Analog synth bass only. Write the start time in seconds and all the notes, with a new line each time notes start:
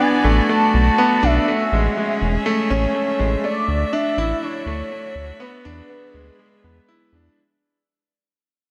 0.24 A1
0.74 B1
1.23 B1
1.72 A1
2.21 E1
2.71 A1
3.20 A1
3.68 D2
4.18 A1
4.66 D2
5.15 D2
5.66 E2
6.14 D2
6.64 E2
7.13 E2